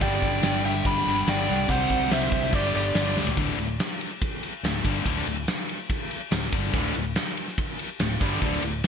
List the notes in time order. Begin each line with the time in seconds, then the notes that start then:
0.01 G1 G2 D3 G3 D5 G5, kick, crash
0.22 G2 D3 G3, kick
0.42 G1 G2 D3 G3, snare, crash
0.64 G2 D3 G3 E5 G5
0.84 G1 G2 D3 G3 G5 B5, kick, crash
1.06 G1 G2 D3 G3, snare
1.18 snare
1.26 G1 G2 D3 G3 D5 G5, snare, crash
1.47 C2 G2 D3 G3
1.68 C2 C3 G3 C4 C5 F#5, kick, crash
1.89 C2 C3 G3 C4, kick
2.10 C2 C3 G3 C4 C5 E5, snare, crash
2.31 C2 C3 G3 C4, kick
2.52 G1 G2 D3 G3 G4 D5, kick, crash
2.73 G1 G2 D3 G3 G4 D5, snare
2.94 G1 G2 D3 G3, snare, crash
3.15 D2 G2 D3 G3, snare
3.27 floor tom
3.37 D1 D2 A2 D3, kick, ride
3.49 snare
3.57 D1 D2 A2, ride
3.80 snare, ride
4.01 ride
4.22 kick, ride
4.43 ride
4.63 D1 D2 A2, snare, ride
4.84 G1 G2 D3 G3, kick, ride
5.04 D1 D2 A2 D3, kick, ride
5.17 snare
5.26 D1 D2 A2, ride
5.48 snare, ride
5.69 ride
5.90 kick, ride
6.11 ride
6.31 D1 D2 A2, snare, ride
6.52 G1 G2 D3 G3, kick, ride
6.73 D1 D2 A2 D3, kick, ride
6.85 snare
6.94 D1 D2 A2, ride
7.16 snare, ride
7.37 ride
7.48 snare
7.58 kick, ride
7.79 ride
8.00 D1 D2 A2, snare, ride
8.20 G1 G2 D3 G3, kick, ride
8.41 D1 D2 A2 D3, kick, ride
8.53 snare
8.62 D1 D2 A2, ride
8.84 ride